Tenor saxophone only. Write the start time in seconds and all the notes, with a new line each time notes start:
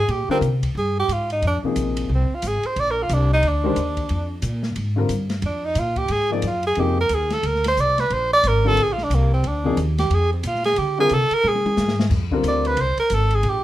Already playing: G#4
0.11 G4
0.31 C4
0.78 G#4
1.00 G4
1.13 F4
1.32 D#4
1.47 D4
2.15 C4
2.35 F4
2.47 G#4
2.66 C5
2.80 D5
2.91 A#4
3.03 F4
3.14 D4
3.33 D#4
3.48 D4
5.46 D4
5.65 D#4
5.79 F4
5.98 G4
6.12 G#4
6.33 C4
6.47 F4
6.66 G#4
6.80 G4
7.01 A#4
7.14 G#4
7.33 A4
7.47 A#4
7.68 C5
7.80 D5
8.00 B4
8.13 C5
8.33 D5
8.47 A#4
8.68 A4
8.83 G#4
8.93 F4
9.03 D4
9.15 A#3
9.34 C4
9.47 D4
9.99 G4
10.14 G#4
10.33 C4
10.47 F4
10.66 G#4
10.78 G4
11.00 G#4
11.13 A4
11.34 A#4
11.48 G#4
12.48 D5
12.67 B4
12.81 C5
13.00 A#4
13.14 A4
13.35 G#4
13.49 G4